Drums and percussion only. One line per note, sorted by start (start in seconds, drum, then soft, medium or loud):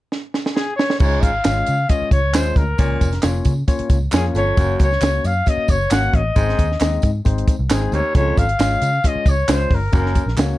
0.12 snare soft
0.34 snare medium
0.46 snare medium
0.56 snare medium
0.79 snare loud
0.90 snare medium
1.00 kick loud
1.00 crash medium
1.00 tambourine soft
1.23 kick medium
1.23 closed hi-hat medium
1.23 tambourine medium
1.44 snare loud
1.44 clap medium
1.44 closed hi-hat medium
1.44 tambourine medium
1.67 closed hi-hat medium
1.67 tambourine soft
1.89 kick medium
1.89 closed hi-hat medium
1.89 tambourine soft
2.11 kick medium
2.11 closed hi-hat medium
2.11 tambourine medium
2.34 snare loud
2.34 clap loud
2.34 closed hi-hat medium
2.34 tambourine loud
2.56 kick medium
2.56 closed hi-hat soft
2.56 tambourine soft
2.78 kick loud
2.78 closed hi-hat medium
2.78 tambourine soft
3.01 kick medium
3.01 closed hi-hat medium
3.01 tambourine medium
3.13 snare soft
3.13 closed hi-hat medium
3.22 snare loud
3.22 clap medium
3.22 closed hi-hat medium
3.22 tambourine medium
3.45 kick medium
3.45 closed hi-hat medium
3.45 tambourine medium
3.68 kick medium
3.68 closed hi-hat medium
3.68 tambourine soft
3.79 closed hi-hat soft
3.90 kick medium
3.90 closed hi-hat medium
3.90 tambourine soft
4.12 snare loud
4.12 clap loud
4.12 closed hi-hat medium
4.12 tambourine loud
4.35 closed hi-hat medium
4.35 tambourine soft
4.57 kick loud
4.57 closed hi-hat medium
4.57 tambourine soft
4.79 kick medium
4.79 closed hi-hat medium
4.79 tambourine medium
4.92 snare soft
5.01 snare loud
5.01 clap medium
5.01 closed hi-hat medium
5.01 tambourine medium
5.24 closed hi-hat medium
5.24 tambourine medium
5.46 kick medium
5.46 closed hi-hat medium
5.46 tambourine soft
5.68 kick medium
5.68 closed hi-hat medium
5.68 tambourine medium
5.91 snare loud
5.91 clap loud
5.91 closed hi-hat medium
5.91 tambourine loud
6.13 kick medium
6.13 closed hi-hat medium
6.36 kick loud
6.36 closed hi-hat medium
6.36 tambourine soft
6.49 snare soft
6.59 kick medium
6.59 closed hi-hat medium
6.59 tambourine soft
6.72 snare soft
6.80 snare loud
6.80 clap medium
6.80 closed hi-hat medium
6.80 tambourine medium
7.02 kick medium
7.02 closed hi-hat medium
7.02 tambourine soft
7.25 kick medium
7.25 closed hi-hat medium
7.25 tambourine soft
7.38 closed hi-hat medium
7.48 kick medium
7.48 closed hi-hat medium
7.48 tambourine medium
7.70 snare loud
7.70 clap loud
7.70 closed hi-hat medium
7.70 tambourine loud
7.92 closed hi-hat soft
7.92 tambourine soft
8.15 kick loud
8.15 closed hi-hat medium
8.15 tambourine soft
8.37 kick medium
8.37 closed hi-hat medium
8.37 tambourine medium
8.49 closed hi-hat medium
8.60 snare loud
8.60 clap medium
8.60 closed hi-hat medium
8.60 tambourine medium
8.82 closed hi-hat medium
8.82 tambourine medium
9.04 kick medium
9.04 closed hi-hat medium
9.04 tambourine soft
9.26 kick medium
9.26 closed hi-hat medium
9.26 tambourine medium
9.48 snare loud
9.48 clap loud
9.48 closed hi-hat medium
9.48 tambourine medium
9.71 kick medium
9.71 open hi-hat soft
9.93 kick loud
9.93 closed hi-hat medium
9.93 tambourine medium
10.06 snare soft
10.15 kick medium
10.15 closed hi-hat medium
10.15 tambourine soft
10.28 snare soft
10.37 snare loud
10.37 clap medium
10.37 closed hi-hat medium
10.37 tambourine medium